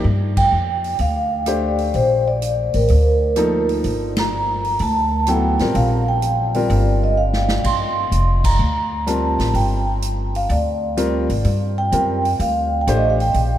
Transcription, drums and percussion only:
0.37 kick medium
0.37 crash medium
0.84 open hi-hat soft
0.99 open hi-hat soft
1.46 cross-stick medium
1.46 closed hi-hat medium
1.78 open hi-hat soft
1.94 open hi-hat soft
2.42 closed hi-hat soft
2.74 open hi-hat soft
2.88 open hi-hat soft
3.36 cross-stick medium
3.36 closed hi-hat soft
3.69 open hi-hat soft
3.84 open hi-hat soft
4.17 snare medium
4.17 ride medium
4.64 open hi-hat soft
4.79 open hi-hat soft
5.27 cross-stick medium
5.27 closed hi-hat soft
5.59 snare soft
5.59 open hi-hat soft
5.75 open hi-hat soft
6.22 closed hi-hat soft
6.54 open hi-hat soft
6.70 open hi-hat soft
7.33 snare medium
7.48 snare medium
7.64 kick medium
7.64 crash medium
8.12 closed hi-hat soft
8.44 kick medium
8.44 crash medium
9.07 cross-stick medium
9.07 closed hi-hat medium
9.39 snare soft
9.39 open hi-hat soft
9.54 open hi-hat soft
10.02 closed hi-hat medium
10.35 open hi-hat soft
10.50 open hi-hat soft
10.97 cross-stick medium
10.97 closed hi-hat soft
11.30 open hi-hat soft
11.44 open hi-hat soft
11.92 closed hi-hat soft
12.25 open hi-hat soft
12.40 open hi-hat soft
12.87 cross-stick medium
12.87 closed hi-hat medium
13.20 open hi-hat soft
13.34 open hi-hat soft

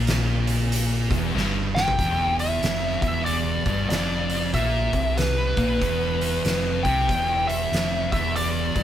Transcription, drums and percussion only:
0.07 snare loud
0.07 closed hi-hat loud
0.47 closed hi-hat medium
0.72 closed hi-hat loud
1.11 kick loud
1.11 closed hi-hat medium
1.37 snare medium
1.76 snare loud
1.88 floor tom medium
1.99 kick medium
1.99 closed hi-hat medium
2.39 closed hi-hat medium
2.63 snare loud
2.63 closed hi-hat medium
3.02 kick loud
3.02 closed hi-hat medium
3.26 closed hi-hat medium
3.66 kick loud
3.66 closed hi-hat medium
3.90 snare loud
3.90 closed hi-hat medium
4.30 closed hi-hat medium
4.54 kick loud
4.54 closed hi-hat medium
4.93 kick loud
4.93 closed hi-hat medium
5.18 snare loud
5.18 closed hi-hat loud
5.57 kick loud
5.57 closed hi-hat medium
5.82 kick loud
5.82 closed hi-hat medium
6.21 closed hi-hat medium
6.45 snare loud
6.45 closed hi-hat loud
6.85 kick loud
6.85 closed hi-hat medium
7.09 kick loud
7.09 closed hi-hat medium
7.49 closed hi-hat medium
7.73 snare loud
7.73 closed hi-hat loud
8.12 kick loud
8.12 closed hi-hat medium
8.36 closed hi-hat medium
8.76 kick loud
8.76 closed hi-hat medium

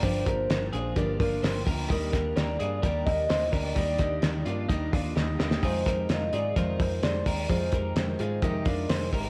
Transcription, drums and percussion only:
0.03 kick loud
0.03 hi-hat pedal medium
0.03 open hi-hat medium
0.26 kick loud
0.26 hi-hat pedal medium
0.26 open hi-hat loud
0.50 snare loud
0.50 hi-hat pedal medium
0.50 open hi-hat loud
0.73 hi-hat pedal medium
0.73 open hi-hat medium
0.96 kick loud
0.96 hi-hat pedal medium
0.96 open hi-hat medium
1.20 kick loud
1.20 hi-hat pedal medium
1.20 open hi-hat medium
1.43 snare loud
1.43 hi-hat pedal medium
1.43 open hi-hat loud
1.67 kick loud
1.67 hi-hat pedal medium
1.67 open hi-hat medium
1.90 kick loud
1.90 hi-hat pedal medium
1.90 open hi-hat medium
2.13 kick loud
2.13 snare soft
2.13 hi-hat pedal medium
2.13 open hi-hat loud
2.37 snare loud
2.37 hi-hat pedal medium
2.37 open hi-hat medium
2.60 hi-hat pedal medium
2.60 open hi-hat medium
2.83 kick loud
2.83 hi-hat pedal medium
2.83 open hi-hat medium
3.07 kick loud
3.07 hi-hat pedal medium
3.07 open hi-hat medium
3.29 snare loud
3.29 hi-hat pedal medium
3.29 open hi-hat loud
3.53 kick loud
3.53 hi-hat pedal medium
3.53 open hi-hat medium
3.76 kick loud
3.76 hi-hat pedal medium
3.76 open hi-hat medium
3.98 kick loud
3.98 snare soft
3.98 hi-hat pedal medium
3.98 open hi-hat loud
4.22 snare loud
4.22 hi-hat pedal medium
4.22 open hi-hat medium
4.46 hi-hat pedal medium
4.46 open hi-hat medium
4.70 kick loud
4.70 hi-hat pedal medium
4.70 open hi-hat medium
4.93 kick loud
4.93 hi-hat pedal medium
4.93 open hi-hat medium
5.17 snare medium
5.40 snare loud
5.51 snare loud
5.63 kick loud
5.63 hi-hat pedal medium
5.63 open hi-hat medium
5.86 kick loud
5.86 snare soft
5.86 hi-hat pedal medium
5.86 open hi-hat loud
6.09 snare loud
6.09 hi-hat pedal medium
6.09 open hi-hat loud
6.33 hi-hat pedal medium
6.33 open hi-hat medium
6.56 kick loud
6.56 hi-hat pedal medium
6.56 open hi-hat medium
6.79 kick loud
6.79 hi-hat pedal medium
6.79 open hi-hat medium
7.03 snare loud
7.03 hi-hat pedal medium
7.03 open hi-hat loud
7.26 kick loud
7.26 hi-hat pedal medium
7.26 open hi-hat medium
7.49 kick loud
7.49 hi-hat pedal medium
7.49 open hi-hat medium
7.72 kick loud
7.72 hi-hat pedal medium
7.72 open hi-hat loud
7.96 snare loud
7.96 hi-hat pedal medium
7.96 open hi-hat medium
8.19 hi-hat pedal medium
8.19 open hi-hat medium
8.42 kick loud
8.42 hi-hat pedal medium
8.42 open hi-hat medium
8.65 kick loud
8.65 hi-hat pedal medium
8.65 open hi-hat medium
8.89 snare loud
8.89 hi-hat pedal medium
8.89 open hi-hat loud
9.13 kick loud
9.13 hi-hat pedal medium
9.13 open hi-hat medium

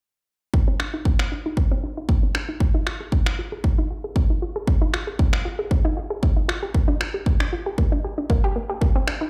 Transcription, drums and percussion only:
0.54 kick loud
0.80 finger snap medium
1.05 kick loud
1.19 finger snap medium
1.57 kick loud
2.09 kick loud
2.35 finger snap medium
2.60 kick loud
2.87 finger snap medium
3.12 kick loud
3.26 finger snap medium
3.64 kick loud
4.16 kick loud
4.67 kick loud
4.94 finger snap medium
5.19 kick loud
5.33 finger snap medium
5.71 kick loud
6.23 kick loud
6.49 finger snap medium
6.74 kick loud
7.01 finger snap medium
7.26 kick loud
7.40 finger snap medium
7.78 kick loud
8.30 kick loud
8.81 kick loud
9.08 finger snap medium

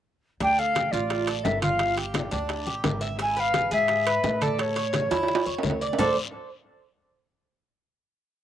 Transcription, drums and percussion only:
0.40 high bongo medium
0.40 high conga soft
0.40 high timbale medium
0.40 long guiro medium
0.58 high bongo soft
0.58 high conga soft
0.75 high bongo medium
0.75 high conga medium
0.75 high timbale medium
0.75 low timbale medium
0.75 short guiro medium
0.93 high bongo soft
0.93 high conga soft
0.93 short guiro medium
1.10 high bongo medium
1.10 high conga soft
1.10 high timbale medium
1.10 long guiro medium
1.27 high bongo soft
1.27 high conga soft
1.27 high timbale medium
1.45 high bongo medium
1.45 low bongo medium
1.45 high conga soft
1.45 low timbale medium
1.45 short guiro medium
1.62 high conga medium
1.62 high timbale medium
1.62 short guiro medium
1.79 high bongo medium
1.79 high conga soft
1.79 high timbale medium
1.79 long guiro medium
1.97 high bongo soft
1.97 high conga soft
1.97 high timbale medium
2.14 high bongo medium
2.14 high conga medium
2.14 high timbale medium
2.14 low timbale medium
2.14 short guiro medium
2.32 high bongo soft
2.32 short guiro medium
2.49 high bongo medium
2.49 high conga soft
2.49 high timbale medium
2.49 long guiro medium
2.67 high bongo soft
2.67 high conga soft
2.84 high bongo medium
2.84 low bongo medium
2.84 high conga medium
2.84 high timbale medium
2.84 low timbale medium
2.84 short guiro medium
3.02 high conga soft
3.02 short guiro medium
3.19 high bongo medium
3.19 high conga soft
3.19 high timbale medium
3.19 long guiro medium
3.36 high bongo soft
3.36 high conga soft
3.54 high bongo medium
3.54 high conga medium
3.54 high timbale medium
3.54 low timbale medium
3.54 short guiro medium
3.72 high bongo soft
3.72 high conga soft
3.72 short guiro medium
3.88 high bongo medium
3.88 high conga soft
3.88 high timbale medium
3.88 long guiro medium
4.06 high bongo soft
4.06 high conga soft
4.06 high timbale medium
4.24 high bongo medium
4.24 low bongo medium
4.24 high conga soft
4.24 low timbale medium
4.24 short guiro medium
4.41 high conga medium
4.41 high timbale medium
4.41 short guiro medium
4.59 high bongo medium
4.59 high conga soft
4.59 high timbale medium
4.59 long guiro medium
4.76 high bongo soft
4.76 high conga soft
4.76 high timbale medium
4.93 high bongo medium
4.93 high conga medium
4.93 high timbale medium
4.93 low timbale medium
4.93 short guiro medium
5.10 high bongo soft
5.10 high timbale medium
5.10 short guiro medium
5.23 high timbale medium
5.28 high bongo medium
5.28 high conga soft
5.28 long guiro medium
5.35 high timbale medium
5.46 high bongo soft
5.46 high conga soft
5.58 low timbale medium
5.63 high bongo medium
5.63 low bongo medium
5.63 high conga medium
5.63 short guiro medium
5.70 low timbale medium
5.81 high conga soft
5.81 short guiro medium
5.93 low timbale medium
5.98 low bongo medium
5.98 low conga medium
5.98 low timbale medium
5.98 long guiro medium

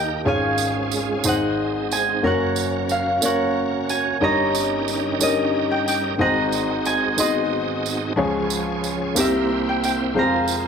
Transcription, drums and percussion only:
0.58 tambourine medium
0.91 tambourine medium
1.24 tambourine loud
1.91 tambourine medium
2.56 tambourine soft
2.89 tambourine medium
3.22 tambourine loud
3.89 tambourine medium
4.55 tambourine medium
4.88 tambourine soft
5.21 tambourine loud
5.88 tambourine medium
6.52 tambourine medium
6.86 tambourine medium
7.18 tambourine loud
7.86 tambourine medium
8.50 tambourine medium
8.84 tambourine medium
9.16 tambourine loud
9.84 tambourine medium
10.48 tambourine medium

